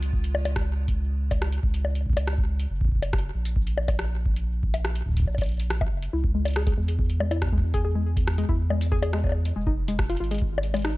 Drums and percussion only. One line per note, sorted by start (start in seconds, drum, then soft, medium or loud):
0.03 closed hi-hat medium
0.13 kick loud
0.24 closed hi-hat medium
0.35 high bongo medium
0.45 closed hi-hat medium
0.45 high bongo medium
0.56 kick loud
0.56 cross-stick loud
0.88 kick loud
0.88 closed hi-hat medium
1.31 kick loud
1.31 closed hi-hat medium
1.31 high bongo soft
1.42 cross-stick loud
1.52 closed hi-hat medium
1.63 kick loud
1.74 closed hi-hat medium
1.85 high bongo soft
1.95 closed hi-hat medium
2.06 kick medium
2.10 kick medium
2.13 kick medium
2.13 closed hi-hat medium
2.13 high bongo medium
2.27 cross-stick loud
2.38 kick loud
2.60 closed hi-hat medium
2.81 kick loud
2.85 kick medium
2.88 kick medium
2.92 kick medium
2.95 kick soft
2.99 kick soft
2.99 closed hi-hat medium
2.99 high bongo soft
3.13 kick loud
3.13 cross-stick loud
3.19 closed hi-hat soft
3.45 closed hi-hat medium
3.56 kick loud
3.67 closed hi-hat medium
3.78 high bongo medium
3.88 kick loud
3.88 closed hi-hat medium
3.88 high bongo medium
3.99 cross-stick loud
4.26 kick loud
4.36 closed hi-hat medium
4.63 kick loud
4.74 closed hi-hat medium
4.74 high bongo soft
4.85 cross-stick loud
4.95 closed hi-hat medium
5.06 kick soft
5.09 kick medium
5.11 kick medium
5.14 kick medium
5.17 kick medium
5.17 closed hi-hat medium
5.19 kick medium
5.22 kick loud
5.25 kick loud
5.25 high bongo soft
5.35 kick loud
5.35 closed hi-hat soft
5.35 high bongo soft
5.41 closed hi-hat soft
5.41 high bongo soft
5.44 closed hi-hat soft
5.46 closed hi-hat soft
5.49 closed hi-hat soft
5.52 closed hi-hat soft
5.54 closed hi-hat soft
5.57 closed hi-hat soft
5.60 closed hi-hat medium
5.70 cross-stick loud
5.81 kick loud
5.81 high bongo soft
6.02 closed hi-hat medium
6.24 kick loud
6.45 closed hi-hat medium
6.45 high bongo soft
6.48 closed hi-hat soft
6.51 closed hi-hat soft
6.53 cross-stick loud
6.53 closed hi-hat soft
6.67 kick loud
6.67 closed hi-hat soft
6.88 closed hi-hat medium
6.99 kick loud
7.10 closed hi-hat soft
7.20 high bongo medium
7.31 closed hi-hat medium
7.31 high bongo medium
7.42 kick soft
7.42 cross-stick loud
7.47 kick medium
7.52 kick medium
7.58 kick medium
7.74 kick loud
7.74 closed hi-hat medium
8.17 kick loud
8.17 closed hi-hat medium
8.27 cross-stick loud
8.38 closed hi-hat soft
8.49 kick loud
8.70 high bongo soft
8.81 closed hi-hat soft
8.92 kick loud
9.02 closed hi-hat medium
9.02 high bongo medium
9.13 cross-stick loud
9.24 kick loud
9.24 high bongo soft
9.27 high bongo soft
9.29 high bongo soft
9.32 high bongo soft
9.45 closed hi-hat medium
9.67 kick loud
9.88 closed hi-hat medium
9.99 kick loud
9.99 cross-stick loud
10.10 closed hi-hat soft
10.17 closed hi-hat soft
10.24 closed hi-hat soft
10.31 closed hi-hat medium
10.35 closed hi-hat soft
10.38 kick loud
10.38 closed hi-hat soft
10.58 high bongo medium
10.63 closed hi-hat medium
10.74 closed hi-hat medium
10.74 high bongo medium
10.77 closed hi-hat soft
10.79 closed hi-hat soft
10.82 cross-stick loud
10.82 closed hi-hat soft
10.85 closed hi-hat soft
10.87 closed hi-hat soft
10.90 closed hi-hat soft
10.93 closed hi-hat soft